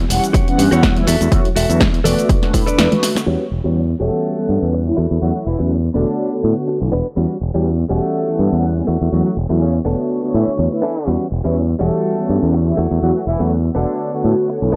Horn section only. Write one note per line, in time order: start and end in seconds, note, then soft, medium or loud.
4.00 4.69 A3 medium
4.00 4.69 A4 medium
5.22 5.30 F#3 medium
5.22 5.30 F#4 medium
5.35 5.42 F#3 medium
5.35 5.42 F#4 medium
5.46 5.63 E3 medium
5.46 5.63 E4 medium
5.95 6.33 D3 medium
5.95 6.33 D4 medium
7.90 8.59 A3 medium
7.90 8.59 A4 medium
9.12 9.21 F#3 medium
9.12 9.21 F#4 medium
9.25 9.33 F#3 medium
9.25 9.33 F#4 medium
9.61 9.78 C#3 medium
9.61 9.78 C#4 medium
10.34 10.51 E3 medium
10.34 10.51 E4 medium
10.83 11.13 E3 medium
10.83 11.13 E4 medium
11.81 12.49 A3 medium
11.81 12.49 A4 medium
13.02 13.11 F#3 medium
13.02 13.11 F#4 medium
13.16 13.23 F#3 medium
13.16 13.23 F#4 medium
13.27 13.44 E3 medium
13.27 13.44 E4 medium
13.76 14.13 D3 medium
13.76 14.13 D4 medium